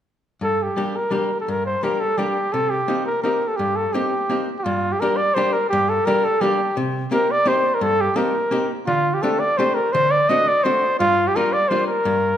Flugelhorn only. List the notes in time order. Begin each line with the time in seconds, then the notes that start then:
0.43 A4
0.62 G4
0.96 A#4
1.13 A#4
1.41 A4
1.49 A#4
1.66 C5
1.84 A#4
2.00 A4
2.18 G4
2.53 A4
2.70 G4
3.06 A#4
3.22 A#4
3.48 A4
3.56 G4
3.76 A4
3.93 G4
4.58 G4
4.64 F4
4.92 G4
5.00 A#4
5.17 D5
5.34 C5
5.53 A#4
5.69 G4
5.89 A4
6.05 A#4
6.24 A4
6.41 G4
7.13 A#4
7.31 D5
7.48 C5
7.75 A#4
7.82 A4
8.01 G4
8.16 A#4
8.87 F4
9.14 G4
9.22 A4
9.40 D5
9.58 C5
9.75 A#4
9.92 C5
10.11 D5
10.29 D#5
10.48 D5
10.64 C5
11.00 F4
11.28 G4
11.36 A#4
11.53 D5
11.68 C5
11.87 A#4